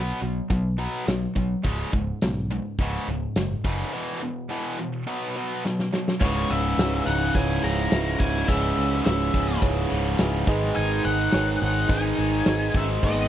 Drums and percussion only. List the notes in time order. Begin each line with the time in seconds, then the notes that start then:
0.22 closed hi-hat
0.50 kick, closed hi-hat
0.79 closed hi-hat
1.08 snare, closed hi-hat, tambourine
1.36 kick, closed hi-hat
1.65 kick, closed hi-hat
1.93 kick, closed hi-hat
2.22 snare, closed hi-hat, tambourine
2.50 closed hi-hat
2.78 kick, closed hi-hat
3.08 closed hi-hat
3.36 snare, closed hi-hat, tambourine
3.64 kick, closed hi-hat
5.65 snare
5.79 snare
5.94 snare
6.08 snare
6.21 kick, crash
6.50 closed hi-hat
6.79 snare, closed hi-hat, tambourine
7.06 closed hi-hat
7.35 kick, closed hi-hat
7.63 closed hi-hat
7.91 snare, closed hi-hat, tambourine
8.20 kick, closed hi-hat
8.35 snare
8.49 kick, closed hi-hat
8.77 closed hi-hat
8.92 snare
9.06 snare, closed hi-hat, tambourine
9.34 kick, closed hi-hat
9.62 kick, closed hi-hat
9.90 closed hi-hat
10.18 snare, closed hi-hat, tambourine
10.47 kick, closed hi-hat
10.63 snare
10.75 closed hi-hat
11.04 closed hi-hat
11.32 snare, closed hi-hat, tambourine
11.61 closed hi-hat
11.89 kick, closed hi-hat
12.17 closed hi-hat
12.45 snare, closed hi-hat, tambourine
12.74 kick, closed hi-hat
12.89 snare
13.03 kick, closed hi-hat